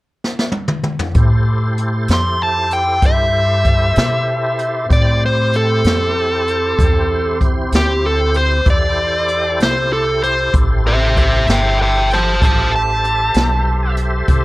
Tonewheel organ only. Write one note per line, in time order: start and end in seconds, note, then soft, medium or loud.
1.14 4.86 E4 medium
1.14 4.86 G4 medium
1.14 4.87 A4 medium
1.14 4.87 C5 medium
4.88 8.61 C4 medium
4.88 8.62 E4 medium
4.88 8.61 G4 medium
4.88 8.61 C5 medium
8.65 12.37 E4 medium
8.65 12.37 G4 medium
8.65 12.36 A4 medium
8.65 12.37 C5 medium
12.40 14.45 G4 medium
12.40 14.45 A4 medium
12.40 14.45 C5 medium
12.40 14.45 E5 medium